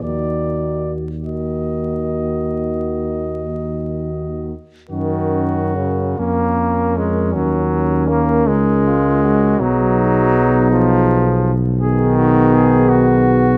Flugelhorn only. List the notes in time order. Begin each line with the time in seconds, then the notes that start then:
0.02 D5
1.24 D#5
4.91 F#4
6.19 C#4
8.49 D#4
8.87 F4
9.23 F#4
9.61 D#4
11.81 G#4
12.18 F#4
12.54 G#4
12.89 F#4